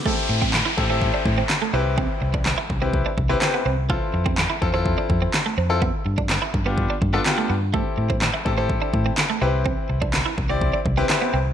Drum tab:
CP |----x-------x---|----x-------x---|----x-------x---|----x-------x---|
SD |----o-------o---|----o-------o---|----o-------o---|----o-------o---|
BD |o--o--o-o-o-----|o--o--o-o-o-----|o--o--o-o-o-----|o--o--o-o-o-----|

CP |----x-------x---|----x-------x---|
SD |----o-------o---|----o-------o---|
BD |o--o--o-o-o-----|o--o--o-o-o-----|